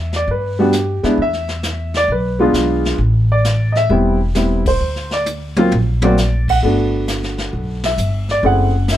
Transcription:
0.00 0.24 E2 medium
0.00 0.11 E5 medium
0.13 0.29 D5 medium
0.13 snare soft
0.28 1.00 G2 medium
0.28 0.59 B4 medium
0.28 brush sweep soft
0.59 0.72 G3 medium
0.59 0.72 B3 medium
0.59 0.72 D4 medium
0.59 0.72 F#4 medium
0.59 1.02 G4 medium
0.73 snare medium
0.73 hi-hat pedal medium
1.03 1.17 B2 medium
1.03 1.17 G#3 medium
1.03 1.17 B3 medium
1.03 1.17 D4 medium
1.03 1.17 E4 medium
1.03 snare soft
1.18 2.04 E2 medium
1.18 brush sweep medium
1.22 1.92 E5 medium
1.33 snare soft
1.48 snare soft
1.63 snare medium
1.63 hi-hat pedal medium
1.94 2.10 D5 loud
1.94 snare soft
2.08 2.51 B1 medium
2.08 2.40 B4 medium
2.08 brush sweep medium
2.39 2.96 G#3 medium
2.39 2.97 B3 medium
2.39 2.97 D4 medium
2.39 2.97 F4 medium
2.39 2.83 G#4 medium
2.53 2.96 B1 medium
2.53 snare medium
2.53 hi-hat pedal medium
2.85 snare soft
2.98 3.85 A1 medium
2.98 brush sweep medium
3.32 3.73 D5 medium
3.45 snare medium
3.45 hi-hat pedal medium
3.72 3.74 D#5 medium
3.72 snare soft
3.77 3.90 E5 loud
3.90 4.76 E1 medium
3.90 4.18 G3 medium
3.90 4.18 B3 medium
3.90 4.19 C4 medium
3.90 4.19 E4 medium
3.90 brush sweep medium
4.35 4.63 G3 medium
4.35 4.63 B3 soft
4.35 4.64 C4 soft
4.35 4.64 E4 medium
4.35 snare medium
4.35 hi-hat pedal medium
4.66 5.09 C5 medium
4.66 kick medium
4.66 ride medium
4.80 5.67 D2 medium
4.80 brush sweep soft
4.96 snare soft
5.11 5.26 D5 medium
5.11 snare soft
5.26 hi-hat pedal medium
5.26 high tom soft
5.57 5.70 F#3 medium
5.57 5.70 A#3 medium
5.57 5.71 C4 medium
5.57 5.71 F4 medium
5.57 high tom medium
5.72 6.58 A#1 medium
5.72 high tom medium
6.02 6.15 F#3 medium
6.02 6.16 A#3 medium
6.02 6.16 C4 medium
6.02 6.16 F#4 medium
6.02 6.45 D5 medium
6.02 high tom medium
6.18 snare medium
6.18 hi-hat pedal medium
6.48 6.58 F#5 medium
6.48 kick medium
6.48 crash medium
6.62 7.49 G1 medium
6.62 7.90 A3 medium
6.62 7.90 B3 medium
6.62 7.91 D4 medium
6.62 7.91 F#4 medium
6.62 brush sweep soft
7.08 snare medium
7.08 hi-hat pedal medium
7.23 snare soft
7.38 snare soft
7.53 7.95 B1 medium
7.53 brush sweep soft
7.84 8.27 E5 medium
7.84 snare medium
7.84 ride medium
7.98 8.40 G1 medium
7.98 hi-hat pedal medium
8.29 8.44 D5 medium
8.29 snare soft
8.43 8.97 F#1 medium
8.43 8.71 A3 soft
8.43 8.71 C4 soft
8.43 8.72 E4 soft
8.43 8.72 G#4 medium
8.43 8.87 F#5 medium
8.43 brush sweep soft
8.88 8.97 E5 medium
8.88 snare medium
8.88 hi-hat pedal medium

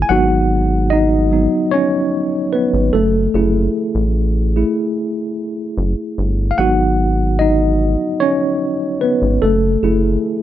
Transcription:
0.02 0.12 G#5 medium
0.09 1.48 G#1 loud
0.09 0.64 F#3 medium
0.09 0.64 B3 medium
0.09 0.65 D#4 medium
0.09 0.88 F#4 medium
0.09 0.87 F#5 loud
0.90 1.32 D#4 medium
0.90 1.74 D#5 loud
1.32 1.68 F#3 medium
1.32 1.69 B3 soft
1.32 1.69 D#4 medium
1.71 2.50 C#4 medium
1.71 2.49 C#5 loud
2.53 2.92 B3 medium
2.53 2.95 B4 medium
2.74 2.91 G#1 loud
2.93 3.28 F#1 loud
2.93 3.34 A3 medium
2.93 5.33 A4 medium
3.34 3.69 F#1 loud
3.34 3.89 A3 medium
3.34 3.89 E4 medium
3.34 3.88 G#4 medium
3.95 4.64 A1 loud
4.56 4.93 A3 soft
4.56 4.93 E4 medium
4.56 4.93 G#4 medium
5.78 5.95 F#1 loud
6.18 6.53 G1 loud
6.51 6.58 F5 medium
6.58 7.97 G#1 loud
6.58 9.39 F#3 medium
6.58 9.02 B3 medium
6.58 7.40 D#4 medium
6.58 7.37 F#4 medium
6.58 7.42 F#5 loud
7.39 8.18 D#4 medium
7.39 8.16 D#5 loud
8.20 8.99 C#4 medium
8.20 9.04 C#5 loud
9.01 9.21 B3 medium
9.01 9.20 B4 medium
9.22 9.39 G#1 loud
9.42 9.77 F#1 loud
9.42 9.82 A3 medium
9.42 10.43 A4 medium
9.83 10.18 F#1 loud
9.83 10.43 A3 medium
9.83 10.43 E4 medium
9.83 10.43 G#4 medium

